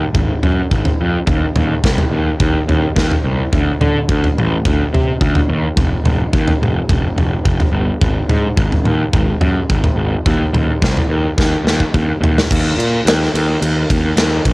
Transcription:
0.14 G#1, kick, floor tom
0.43 F#2, floor tom
0.71 G#1, kick
0.85 floor tom
1.01 F2
1.27 D#2, kick, floor tom
1.56 D#2, floor tom, mid tom
1.84 C2, kick, snare
1.98 floor tom
2.11 D#2
2.40 D#2, kick, floor tom
2.68 D#2, floor tom
2.96 D#2, kick, snare
3.11 floor tom
3.24 C2
3.53 D2, kick, floor tom
3.81 D3, floor tom, mid tom
4.09 D2, kick
4.24 floor tom
4.38 A1, mid tom
4.65 D2, kick, floor tom
4.94 C3, floor tom
5.21 D2, kick
5.35 floor tom
5.49 D#2
5.77 F1, kick, floor tom
6.04 F1, floor tom, mid tom
6.33 D#2, kick
6.48 floor tom
6.62 F1, mid tom
6.89 F1, kick, floor tom
7.16 F1, floor tom
7.45 F1, kick
7.60 floor tom
7.72 G1
8.01 G#1, kick, floor tom
8.29 G#2, floor tom, mid tom
8.57 G#1, kick
8.72 floor tom
8.85 D#2, mid tom
9.13 G#1, kick, floor tom
9.41 F#2, floor tom
9.70 G#1, kick
9.84 floor tom
9.96 G#1
10.26 D#2, kick, floor tom
10.53 D#2, floor tom, mid tom
10.82 C2, kick, snare
10.97 floor tom
11.09 D#2
11.38 D#2, kick, snare
11.65 D#2, snare
11.80 kick
11.94 D#2, kick
12.21 D#2, floor tom
12.38 snare
12.51 D#2, kick, crash
12.77 A#2, ride
13.05 D#2, snare, ride
13.23 snare
13.34 D#2, ride
13.62 D#2, ride
13.90 D#2, kick, ride
14.17 D#2, snare, ride
14.45 A#1, kick, ride

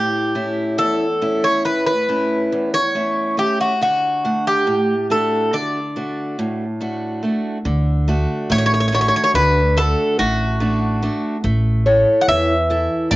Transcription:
Already playing: A2 G4
0.35 A3 C#4 E4
0.78 E2 A4
1.22 A3 C#4 E4
1.44 C#5
1.65 A2 B4
1.87 B4
2.09 A3 C#4 E4
2.52 E2
2.74 C#5
2.95 A3 C#4 E4
3.37 A3 C#4 E4 G4
3.61 F#4
3.81 D3 F#4
4.24 A3 D4 F#5
4.47 G4
4.67 A2
5.10 A3 D4 F#4 A4
5.53 D3 D5
5.96 A3 D4 F#4
6.39 A2
6.80 A3 D4 F#4
7.23 A3 D4 F#4
7.65 D2 D3
8.08 A3 D4 F#4
8.50 A1 A3 C#5
8.58 C#5
8.66 C#5
8.74 C#5
8.80 C#5
8.88 C#5
8.92 A3 D4 F#4 C#5
9.01 C#5
9.08 C#5
9.16 C#5
9.24 C#5
9.34 D2 D3 B4
9.77 A3 D4 F#4 A4
10.19 A1 A3 F#4
10.60 A3 D4 F#4
11.02 A3 D4 F#4
11.44 A1 A3
11.86 E4 A4 C#5
12.21 F#5
12.28 E2 E3 E5
12.70 E4 A4 E5
13.11 A1 A3 D5

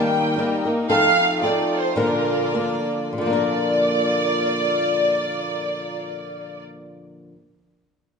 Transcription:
Already playing: D#3 G3 A#3 D#4 G4 A#4
0.01 G5
0.37 G3 A#3 D#4 A#4
0.65 A#3 D#4 A#4
0.89 F3 A3 C4 D#4 F4 A4 F5
1.42 F3 C4 D#4 A4 D5
1.80 C5
1.96 A#2 D3 F3 A#3 D4 A#4 D5
2.54 F3 A#3 D4 A#4
3.13 A#2
3.18 D3 F3 D5
3.22 A#3 F4 D5
3.30 D4 A#4

